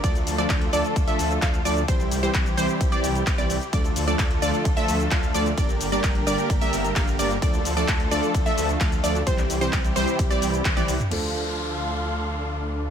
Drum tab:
CC |----------------|----------------|----------------|----------------|
RD |x---x---x---x---|x---x---x---x---|x---x---x---x---|x---x---x---x---|
HH |xxoxxxoxxxoxxxox|xxoxxxoxxxoxxxox|xxoxxxoxxxoxxxox|xxoxxxoxxxoxxxox|
SH |xxxxx-xxxxxxxxxx|xxxxxxxxxxxxxxxx|xxxxx-xxxxxxxxxx|xxxxx-xxxxxxxxxx|
CP |----x-------x---|----x-------x---|----x-------x---|----x-------x---|
T1 |----------------|----------------|----------------|----------------|
T2 |----------------|----------------|----------------|----------------|
BD |o---o---o---o---|o---o---o---o---|o---o---o---o---|o---o---o---o---|

CC |----------------|----------------|x---------------|
RD |x---x---x---x---|x---x---x---x---|----------------|
HH |xxoxxxoxxxoxxxox|xxoxxxoxxxoxxxox|----------------|
SH |xxxxx-xxxxxxxxxx|xxxxxxxxxxxxxxxx|----------------|
CP |----x-------x---|-x--x-------x---|----------------|
T1 |----------------|------------oo--|----------------|
T2 |----------------|---------------o|----------------|
BD |o---o---o---o---|o---o---o---o---|----------------|